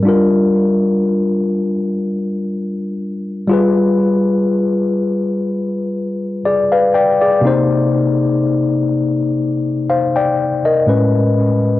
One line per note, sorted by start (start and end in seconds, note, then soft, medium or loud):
0.03 3.45 G3 medium
0.03 3.46 D4 medium
0.03 3.46 F4 medium
0.09 3.47 A#4 medium
3.48 7.38 G3 medium
3.48 7.39 F4 medium
3.48 6.42 G#4 medium
3.53 6.43 B4 medium
6.45 6.71 G#4 medium
6.45 6.71 D5 medium
6.72 6.94 B4 medium
6.72 6.93 F5 medium
6.94 7.20 D5 medium
6.94 7.20 G5 medium
7.21 7.68 G#4 medium
7.21 7.68 D5 medium
7.41 10.83 C3 medium
7.41 10.84 A#3 medium
7.41 10.84 D#4 medium
7.47 9.87 C5 medium
9.90 10.15 C5 medium
9.90 10.15 F5 medium
10.16 10.63 D5 medium
10.16 10.63 G5 medium
10.65 11.12 A#4 medium
10.65 11.12 D#5 medium
10.87 11.80 A2 medium
10.87 11.80 G#3 medium
10.87 11.80 C#4 medium
10.87 11.80 B4 medium